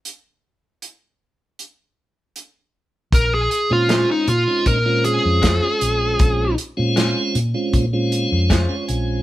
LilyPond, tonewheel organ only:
\new Staff \with { instrumentName = "Tonewheel organ" } { \time 4/4 \key bes \minor \tempo 4 = 78 << { r1 | r1 | r2. des''8 aes''8 | } \\ { r1 | r8. <aes c' des' f'>8. r16 <aes c' des' ees'>8 <aes c' des' f'>8. r16 <aes c' des' f'>8.~ | <aes c' des' f'>8 r16 <aes c' des' f'>8. r16 <aes c' des' f'>8 <aes c' des' f'>8. r16 <aes c' des' f'>8. | } >> }